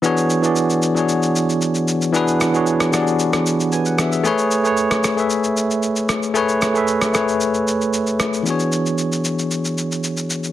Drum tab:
SH |xxxxxxxxxxxxxxxx|xxxxxxxxxxxxxxxx|xxxxxxxxxxxxxxxx|xxxxxxxxxxxxxxxx|
SD |----------------|--r--rr--r----r-|-----rr-------r-|--r--rr-------r-|

SH |xxxxxxxxxxxxxxxx|
SD |----------------|